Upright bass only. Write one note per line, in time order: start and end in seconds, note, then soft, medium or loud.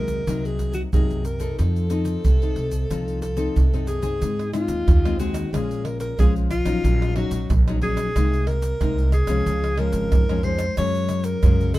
0.00 0.22 D#2 medium
0.27 0.83 C2 medium
0.93 1.07 F#2 medium
1.11 1.52 F#2 medium
1.59 2.15 F2 medium
2.25 2.53 C2 medium
2.56 2.85 C2 medium
2.91 3.46 C2 medium
3.56 3.70 C2 medium
3.74 4.15 F#2 medium
4.22 4.64 G#2 medium
4.68 4.83 D#2 medium
4.88 5.43 D#2 medium
5.53 6.09 A#1 medium
6.19 6.61 A#1 medium
6.65 6.80 A#1 medium
6.84 7.26 A#1 medium
7.31 7.46 A#1 medium
7.50 8.06 A#1 loud
8.15 8.71 C2 medium
8.81 9.23 C2 loud
9.28 9.43 C2 medium
9.47 9.88 C#2 medium
9.93 10.08 G#1 medium
10.12 10.68 F2 medium
10.77 11.33 F#2 medium
11.43 11.79 F#2 medium